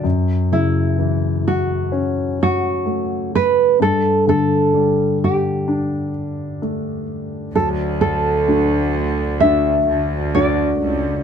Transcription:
<<
  \new Staff \with { instrumentName = "Nylon-string guitar" } { \time 4/4 \key d \major \tempo 4 = 64 r8 e'4 fis'4 fis'4 b'8 | a'8 a'4 g'2 r8 | a'8 a'4. e''4 d''4 | }
  \new Staff \with { instrumentName = "Grand piano" } { \time 4/4 \key d \major fis,8 cis8 e4 cis'4 a4 | g,8 d8 g4 d'4 a4 | fis4 <a d' fis'>4 <a d' fis'>4 <a d' fis'>4 | }
  \new Staff \with { instrumentName = "Cello section" } { \clef bass \time 4/4 \key d \major r1 | r1 | d,2~ d,8 d,4 cis,8 | }
>>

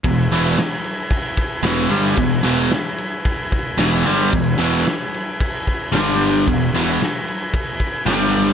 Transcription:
<<
  \new Staff \with { instrumentName = "Transistor combo organ" } { \time 4/4 \key e \major \tempo 4 = 112 << { r1 | r1 | r1 | r2 \tuplet 3/2 { r8. b''16 gis''8 } g''8 e''8 | } \\ { <e' gis' b'>1~ | <e' gis' b'>1 | <e' gis' b'>2. <d' g' d''>4 | <e' gis' b'>2. <d' g' d''>4 | } >> }
  \new Staff \with { instrumentName = "Overdriven electric guitar" } { \clef bass \time 4/4 \key e \major <e, b,>8 <e, b, e>8 r2 <e, b, e>8 <g, d g>8 | <e, b,>8 <e, b, e>8 r2 <e, b, e>8 <g, d g>8 | <e, b,>8 <e, b, e>8 r2 <g, d g>4 | <e, b,>8 <e, b, e>8 r2 <g, d g>4 | }
  \new Staff \with { instrumentName = "Picked electric bass" } { \clef bass \time 4/4 \key e \major e,,8 e,,8 r2 e,,8 g,,8 | e,,8 e,,8 r2 e,,8 g,,8 | e,,8 e,,8 r2 g,,4 | e,,8 e,,8 r2 g,,4 | }
  \new DrumStaff \with { instrumentName = "Drums" } \drummode { \time 4/4 <cymc bd>8 cymc8 <cymc sn>8 cymc8 <cymc bd>8 <cymc bd>8 <cymc sn>8 cymc8 | <cymc bd>8 cymc8 <cymc sn>8 cymc8 <cymc bd>8 <cymc bd>8 <cymc sn>8 cymc8 | <cymc bd>8 cymc8 <cymc sn>8 cymc8 <cymc bd>8 <cymc bd>8 <cymc sn>8 cymc8 | <cymc bd>8 cymc8 <cymc sn>8 cymc8 <cymc bd>8 <cymc bd>8 <cymc sn>8 cymc8 | }
>>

